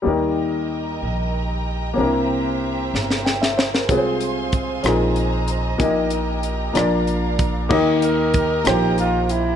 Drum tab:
CC |------------|------------|------------|------------|
HH |------------|------------|x-x-x-x-x-x-|x-x-x-x-x-x-|
SD |------------|------oooooo|------r-----|------r-----|
BD |------------|------------|o---o-------|o---------o-|

CC |x-----------|
HH |--x-x-x-x-x-|
SD |------r-----|
BD |o---o-------|